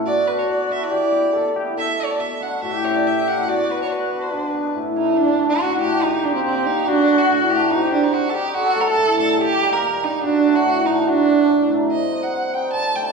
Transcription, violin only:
0.06 0.29 D5 loud
0.28 0.40 B4 medium
0.39 0.49 C#5 medium
0.50 0.73 D5 medium
0.72 0.85 E5 loud
0.83 1.46 D5 medium
1.78 2.02 E5 loud
2.00 2.12 C#5 medium
2.11 2.22 D5 medium
2.20 2.44 E5 medium
2.42 2.63 F#5 medium
2.63 2.87 E5 loud
2.85 2.97 C#5 medium
2.96 3.09 D5 loud
3.07 3.29 E5 medium
3.28 3.50 F#5 medium
3.49 3.73 D5 loud
3.71 3.81 B4 medium
3.82 3.85 C#5 medium
3.82 3.88 D5 medium
3.87 3.94 C#5 medium
3.92 4.76 B4 medium
4.97 5.19 D#4 medium
5.17 5.49 D4 loud
5.49 5.79 F#4 medium
5.81 6.04 G4 loud
6.03 6.25 D#4 loud
6.24 6.34 D4 medium
6.35 6.44 C4 medium
6.45 6.67 C4 medium
6.66 6.90 D#4 loud
6.88 7.20 D4 loud
7.18 7.51 F#4 loud
7.50 7.72 G4 medium
7.71 7.92 D#4 loud
7.93 8.05 D4 medium
8.03 8.15 D#4 medium
8.13 8.31 F#4 medium
8.30 8.36 A4 medium
8.34 8.48 G4 loud
8.48 8.56 G4 medium
8.54 8.82 F#4 loud
8.81 8.89 A#4 medium
8.88 9.19 A4 loud
9.20 9.33 A4 loud
9.33 9.43 A4 medium
9.41 9.74 G4 loud
9.73 10.06 A#4 loud
10.04 10.23 D#4 loud
10.24 10.57 D4 loud
10.55 10.88 F#4 loud
10.86 11.02 D#4 medium
11.02 11.10 D#4 medium
11.09 11.71 D4 loud
11.92 12.24 D#5 medium
12.23 12.55 F#5 medium
12.54 12.73 G5 medium
12.73 12.98 A5 loud
12.96 13.06 G5 loud
13.06 13.12 A5 medium

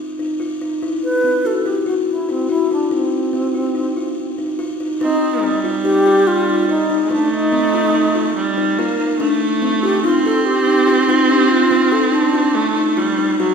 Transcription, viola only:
5.01 5.45 C4 medium
5.43 7.04 G3 medium
7.05 7.12 G#3 medium
7.10 8.36 A3 medium
8.36 8.80 G3 medium
8.79 9.18 A#3 medium
9.19 10.05 A3 medium
10.04 12.56 C4 loud
12.55 13.00 A3 medium
12.98 13.39 G3 medium
13.40 13.54 F#3 medium

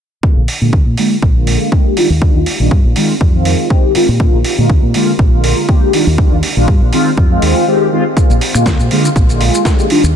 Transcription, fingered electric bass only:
0.23 muted fingered electric bass stroke soft
0.37 0.45 A#1 medium
0.61 0.70 A#2 medium
0.73 0.83 D2 medium
0.86 0.95 A#2 medium
1.22 1.55 A#1 medium
2.10 2.28 D#2 medium
2.34 2.43 D#2 medium
2.59 2.68 A#1 medium
2.71 2.81 G2 medium
2.84 2.93 A#1 medium
3.21 3.53 F2 medium
3.95 muted fingered electric bass stroke soft
4.08 4.26 A#2 medium
4.33 4.42 A#1 medium
4.58 4.67 A#2 medium
4.70 4.79 D2 medium
4.83 4.91 A#2 medium
5.19 5.52 A#1 medium
6.07 6.25 D#2 medium
6.32 6.40 D#2 loud
6.56 6.65 A#1 medium
6.68 6.78 G2 medium
6.81 6.90 A#1 medium
7.17 7.42 F2 medium
7.42 7.52 D#2 medium
8.17 muted fingered electric bass stroke soft
8.30 8.38 A#1 medium
8.55 8.63 A#2 medium
8.66 8.76 D2 medium
8.79 8.88 A#2 medium
9.16 9.48 A#1 medium
10.03 10.16 D#2 medium

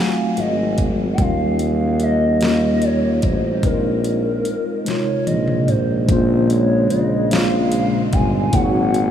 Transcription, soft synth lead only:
0.00 0.41 F5 medium
0.39 0.79 D#5 medium
1.13 1.22 G5 medium
1.21 1.61 F5 loud
1.62 1.99 F5 medium
2.03 2.86 D#5 medium
2.85 3.27 C#5 medium
3.25 3.67 C5 medium
3.65 4.86 A#4 medium
4.86 5.24 C#5 medium
5.26 5.70 D#5 loud
5.68 6.51 C5 loud
6.50 6.90 C#5 loud
6.90 7.28 D#5 medium
7.31 8.15 F5 loud
8.13 8.56 G#5 loud
8.54 9.11 F#5 loud

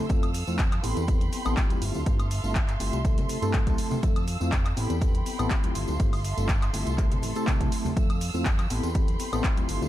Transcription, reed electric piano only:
0.10 0.30 C4 medium
0.10 0.30 E4 medium
0.10 0.30 F4 medium
0.10 0.30 A4 medium
0.47 0.59 A3 medium
0.47 0.59 C4 medium
0.47 0.59 E4 medium
0.47 0.59 F4 medium
0.47 0.60 C5 medium
0.83 1.04 B3 medium
0.83 1.04 C4 medium
0.83 1.04 E4 medium
0.83 1.04 G4 medium
0.83 1.04 A4 loud
1.08 1.42 B3 medium
1.08 1.42 C4 medium
1.08 1.43 E4 medium
1.08 1.43 G4 medium
1.08 1.43 A4 medium
1.45 1.55 B3 medium
1.45 1.55 C4 medium
1.45 1.55 E4 medium
1.45 1.56 G4 medium
1.45 1.56 A4 loud
1.57 2.03 A3 medium
1.57 2.04 C4 medium
1.57 2.04 G4 medium
2.06 2.27 A3 medium
2.06 2.27 C4 medium
2.06 2.27 E4 medium
2.06 2.27 F4 medium
2.06 2.27 G4 medium
2.44 2.56 A3 medium
2.44 2.56 C4 medium
2.44 2.56 E4 medium
2.44 2.56 F4 medium
2.44 2.56 A4 medium
2.80 3.01 A3 medium
2.80 3.01 C4 medium
2.80 3.01 E4 medium
2.80 3.01 F4 medium
2.80 3.01 G4 loud
3.04 3.39 A3 medium
3.04 3.39 C4 medium
3.04 3.39 E4 medium
3.04 3.39 G4 medium
3.04 3.40 A4 medium
3.42 3.52 A3 medium
3.42 3.52 C4 medium
3.42 3.52 E4 medium
3.42 3.52 G4 medium
3.42 3.52 A4 loud
3.54 4.00 A3 medium
3.54 4.00 E4 medium
4.03 4.23 A3 medium
4.03 4.24 C4 medium
4.03 4.24 E4 medium
4.03 4.24 F4 medium
4.03 4.24 A4 medium
4.40 4.52 A3 medium
4.40 4.53 C4 medium
4.40 4.53 E4 medium
4.40 4.53 F4 medium
4.40 4.53 C5 medium
4.76 4.97 B3 medium
4.76 4.97 C4 medium
4.76 4.97 E4 medium
4.76 4.98 G4 medium
4.76 4.98 A4 loud
5.01 5.36 B3 medium
5.01 5.36 C4 medium
5.01 5.36 E4 medium
5.01 5.36 A4 medium
5.39 5.49 B3 loud
5.39 5.49 C4 medium
5.39 5.49 E4 medium
5.39 5.49 G4 medium
5.39 5.49 A4 loud
5.50 5.97 A3 medium
5.50 5.97 C4 medium
5.99 6.20 A3 medium
5.99 6.20 C4 medium
5.99 6.20 E4 medium
5.99 6.20 F4 medium
5.99 6.21 G4 medium
6.37 6.49 A3 medium
6.37 6.49 C4 medium
6.37 6.49 E4 medium
6.37 6.50 F4 medium
6.37 6.50 A4 medium
6.73 6.94 A3 medium
6.73 6.94 C4 medium
6.73 6.94 E4 medium
6.73 6.94 F4 medium
6.73 6.94 G4 medium
6.98 7.33 A3 medium
6.98 7.33 C4 medium
6.98 7.33 E4 medium
6.98 7.33 G4 medium
6.98 7.33 A4 medium
7.35 7.45 A3 medium
7.35 7.46 C4 medium
7.35 7.46 E4 medium
7.35 7.46 G4 medium
7.35 7.46 A4 loud
7.47 7.94 A3 medium
7.47 7.94 C4 medium
7.47 7.94 E4 medium
7.47 7.94 G4 medium
7.47 7.94 A4 medium
7.96 8.17 A3 medium
7.96 8.17 C4 medium
7.96 8.17 E4 medium
7.96 8.17 F4 medium
7.96 8.17 A4 medium
8.34 8.46 A3 medium
8.34 8.46 C4 medium
8.34 8.46 E4 medium
8.34 8.46 F4 medium
8.34 8.46 C5 medium
8.70 8.91 B3 medium
8.70 8.91 C4 medium
8.70 8.91 E4 medium
8.70 8.91 G4 medium
8.70 8.91 A4 loud
8.95 9.29 B3 medium
8.95 9.29 C4 medium
8.95 9.30 E4 medium
8.95 9.30 G4 medium
8.95 9.30 A4 medium
9.32 9.42 B3 medium
9.32 9.42 C4 medium
9.32 9.42 E4 medium
9.32 9.43 G4 medium
9.32 9.43 A4 loud
9.44 9.88 C4 medium
9.44 9.88 E4 medium
9.44 9.88 F4 medium

